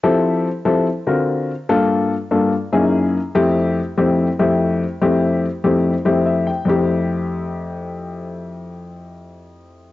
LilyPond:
\new Staff \with { instrumentName = "Grand piano" } { \time 4/4 \key f \major \tempo 4 = 145 << { r1 | r1 | r1 | r2. e''8 g''8 |
r1 | r1 | } \\ { <f c' e' g' a'>4 r8 <f c' e' g' a'>8 r8 <d c' eis' fis' ais'>4 r8 | <g, bes d' f' a'>4 r8 <g, bes d' f' a'>8 r8 <ges, bes des' ees' fes' aes'>4 r8 | <f, a c' e' g'>4 r8 <f, a c' e' g'>8 r8 <f, a c' e' g'>4 r8 | <f, a c' e' g'>4 r8 <f, a c' e' g'>8 r8 <f, a c' e' g'>4 r8 |
<f, a c' e' g'>1~ | <f, a c' e' g'>1 | } >> }